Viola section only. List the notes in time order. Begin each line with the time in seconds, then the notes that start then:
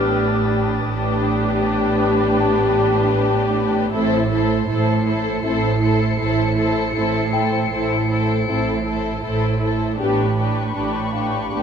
Already playing: D4
0.90 D4
3.93 E4
4.30 E4
4.69 E4
5.05 E4
5.44 E4
5.80 E4
6.19 E4
6.56 E4
6.94 E4
7.33 E4
7.71 E4
8.10 E4
8.47 E4
8.86 E4
9.22 E4
9.60 E4
9.98 D4
10.37 D4
10.75 D4
11.12 D4
11.50 D4